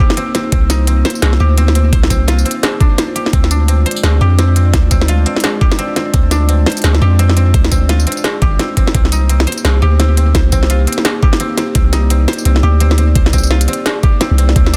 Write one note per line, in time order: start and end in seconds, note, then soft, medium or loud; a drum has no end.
0.00 3.29 A#3 medium
0.00 0.17 C4 medium
0.00 0.23 D#4 medium
0.00 3.29 D#4 medium
0.00 1.65 F4 loud
0.00 0.49 G4 medium
0.00 1.40 G4 loud
0.00 1.04 C5 medium
0.00 3.29 C5 loud
0.10 snare medium
0.17 0.34 C4 loud
0.17 closed hi-hat medium
0.35 0.52 C4 medium
0.35 snare medium
0.35 closed hi-hat medium
0.52 1.04 C2 loud
0.52 0.87 C4 medium
0.52 8.90 F4 medium
0.52 kick loud
0.52 closed hi-hat medium
0.70 2.86 D#4 medium
0.70 snare medium
0.70 closed hi-hat medium
0.70 tambourine medium
0.87 1.22 C4 medium
0.87 closed hi-hat medium
1.05 1.92 C5 loud
1.05 snare medium
1.05 closed hi-hat medium
1.10 closed hi-hat medium
1.15 tambourine soft
1.22 1.39 C2 medium
1.22 1.57 C4 medium
1.22 snare loud
1.22 closed hi-hat medium
1.33 snare soft
1.40 1.92 D2 loud
1.40 3.15 G4 loud
1.58 1.75 C4 loud
1.58 closed hi-hat medium
1.68 snare medium
1.75 2.10 C4 medium
1.75 closed hi-hat medium
1.93 2.44 C2 loud
1.93 2.62 C5 medium
1.93 kick loud
1.93 closed hi-hat medium
2.03 snare medium
2.10 2.45 C4 loud
2.10 kick medium
2.10 closed hi-hat medium
2.10 tambourine medium
2.28 4.46 F4 loud
2.28 snare medium
2.28 closed hi-hat medium
2.39 tambourine soft
2.45 3.33 C4 medium
2.45 closed hi-hat soft
2.51 closed hi-hat medium
2.63 2.98 C5 medium
2.63 snare loud
2.63 snare soft
2.63 closed hi-hat medium
2.80 3.50 D4 medium
2.80 kick loud
2.80 closed hi-hat soft
2.98 3.85 C5 medium
2.98 snare medium
2.98 closed hi-hat medium
3.15 4.21 G4 medium
3.15 closed hi-hat medium
3.26 snare medium
3.33 3.85 D2 loud
3.33 8.91 G#3 medium
3.33 3.68 C4 medium
3.33 8.91 D4 medium
3.33 8.91 D5 medium
3.33 kick loud
3.33 closed hi-hat medium
3.44 snare soft
3.51 5.93 D4 medium
3.51 closed hi-hat medium
3.51 tambourine medium
3.68 4.03 C4 medium
3.68 closed hi-hat medium
3.86 4.73 C5 loud
3.86 closed hi-hat soft
3.91 closed hi-hat medium
3.96 tambourine soft
4.03 4.20 D2 loud
4.03 4.38 C4 medium
4.03 snare loud
4.03 snare soft
4.03 closed hi-hat medium
4.21 4.73 F2 loud
4.21 5.61 G4 loud
4.38 4.56 C4 loud
4.38 snare soft
4.38 closed hi-hat medium
4.56 4.91 C4 medium
4.56 closed hi-hat medium
4.74 5.25 D2 loud
4.74 5.43 C5 medium
4.74 kick loud
4.74 snare medium
4.74 closed hi-hat medium
4.91 5.26 C4 loud
4.91 kick medium
4.91 closed hi-hat medium
4.91 tambourine medium
5.01 snare medium
5.08 7.27 F4 loud
5.08 closed hi-hat medium
5.26 5.78 C4 medium
5.26 closed hi-hat soft
5.36 snare medium
5.36 closed hi-hat medium
5.44 6.66 C5 medium
5.44 snare loud
5.44 closed hi-hat medium
5.61 7.01 G4 loud
5.61 kick loud
5.72 snare medium
5.79 5.96 C4 loud
5.79 closed hi-hat medium
5.96 6.13 C4 medium
5.96 snare medium
5.96 closed hi-hat medium
6.14 6.66 D2 loud
6.14 6.48 C4 medium
6.14 kick loud
6.14 closed hi-hat medium
6.31 8.74 D4 medium
6.31 snare medium
6.31 closed hi-hat medium
6.31 tambourine medium
6.49 6.83 C4 medium
6.49 closed hi-hat medium
6.66 7.54 C5 loud
6.66 snare medium
6.66 closed hi-hat soft
6.70 closed hi-hat soft
6.72 closed hi-hat medium
6.72 closed hi-hat soft
6.77 closed hi-hat soft
6.77 tambourine soft
6.82 7.19 C4 medium
6.82 snare loud
6.82 closed hi-hat soft
6.84 7.00 D2 loud
6.84 closed hi-hat medium
6.95 snare medium
7.02 7.53 F2 loud
7.02 8.41 G4 loud
7.19 7.36 C4 loud
7.19 closed hi-hat medium
7.29 snare medium
7.37 7.71 C4 medium
7.37 closed hi-hat medium
7.54 8.06 D2 loud
7.54 8.24 C5 medium
7.54 kick loud
7.54 closed hi-hat medium
7.64 snare medium
7.72 8.06 C4 loud
7.72 kick medium
7.72 closed hi-hat medium
7.72 tambourine medium
7.89 10.08 F4 loud
7.89 snare medium
7.89 closed hi-hat medium
8.00 tambourine soft
8.07 8.59 C4 medium
8.07 closed hi-hat soft
8.12 closed hi-hat medium
8.17 tambourine soft
8.24 9.47 C5 medium
8.24 snare loud
8.24 snare medium
8.24 closed hi-hat medium
8.42 8.58 G#1 loud
8.42 9.82 G4 loud
8.42 kick loud
8.42 closed hi-hat soft
8.59 8.77 C4 loud
8.59 snare medium
8.59 closed hi-hat medium
8.77 8.94 C4 medium
8.77 kick medium
8.77 closed hi-hat medium
8.87 snare medium
8.94 9.46 C2 loud
8.94 14.52 A#3 medium
8.94 9.29 C4 medium
8.94 14.52 D#4 medium
8.94 14.52 G4 medium
8.94 11.72 C5 loud
8.94 kick loud
8.94 closed hi-hat medium
9.05 snare medium
9.12 11.46 D#4 medium
9.12 closed hi-hat medium
9.12 tambourine medium
9.29 9.64 C4 medium
9.29 closed hi-hat medium
9.40 snare medium
9.47 10.34 C5 loud
9.47 closed hi-hat medium
9.52 closed hi-hat medium
9.58 tambourine soft
9.65 9.81 C2 medium
9.65 9.99 C4 medium
9.65 snare loud
9.65 snare medium
9.65 closed hi-hat medium
9.82 10.34 D2 loud
9.82 11.22 G4 loud
9.99 10.17 C4 loud
9.99 snare medium
9.99 closed hi-hat medium
10.17 10.52 C4 medium
10.17 closed hi-hat medium
10.35 10.87 C2 loud
10.35 11.05 C5 medium
10.35 kick loud
10.35 snare medium
10.35 closed hi-hat medium
10.52 10.87 C4 loud
10.52 kick medium
10.52 closed hi-hat medium
10.52 tambourine medium
10.63 snare medium
10.70 12.89 F4 loud
10.70 closed hi-hat medium
10.87 11.40 C4 medium
10.87 closed hi-hat medium
10.93 closed hi-hat medium
10.98 snare medium
11.05 12.28 C5 medium
11.05 snare loud
11.05 closed hi-hat medium
11.23 12.63 G4 loud
11.23 kick loud
11.33 snare medium
11.40 11.57 C4 loud
11.40 closed hi-hat medium
11.58 11.75 C4 medium
11.58 snare medium
11.58 closed hi-hat medium
11.75 12.27 C2 loud
11.75 12.10 C4 medium
11.75 14.77 D5 medium
11.75 kick loud
11.75 closed hi-hat medium
11.93 14.27 D#4 medium
11.93 snare medium
11.93 closed hi-hat medium
11.93 tambourine medium
12.10 12.45 C4 medium
12.10 closed hi-hat medium
12.28 13.15 C5 loud
12.28 snare medium
12.28 closed hi-hat soft
12.33 closed hi-hat medium
12.38 tambourine soft
12.45 12.62 C2 loud
12.45 12.80 C4 medium
12.45 closed hi-hat medium
12.56 snare medium
12.63 13.15 D2 loud
12.63 14.03 G4 loud
12.80 12.98 C4 loud
12.80 closed hi-hat medium
12.91 snare medium
12.98 13.33 C4 medium
12.98 closed hi-hat medium
13.15 13.67 C2 loud
13.15 13.85 C5 medium
13.15 kick loud
13.15 closed hi-hat medium
13.26 snare medium
13.33 13.68 C4 loud
13.33 kick medium
13.33 closed hi-hat medium
13.33 tambourine medium
13.38 tambourine medium
13.43 tambourine soft
13.47 14.77 F4 loud
13.47 snare medium
13.47 tambourine soft
13.61 closed hi-hat medium
13.61 tambourine soft
13.68 14.20 C4 medium
13.68 closed hi-hat soft
13.73 closed hi-hat medium
13.86 14.77 C5 medium
13.86 snare loud
13.86 snare soft
13.86 closed hi-hat medium
14.03 14.77 G4 loud
14.03 kick loud
14.03 closed hi-hat soft
14.21 14.38 C4 loud
14.21 snare medium
14.21 closed hi-hat medium
14.31 14.55 C2 loud
14.38 14.55 C4 medium
14.38 closed hi-hat medium
14.49 snare medium
14.56 14.77 D2 loud
14.56 14.77 G#3 medium
14.56 14.77 C4 medium
14.56 14.77 D4 medium
14.56 14.77 F4 medium
14.56 kick loud
14.56 closed hi-hat medium
14.66 snare medium
14.73 14.77 D4 medium
14.73 closed hi-hat medium
14.73 tambourine medium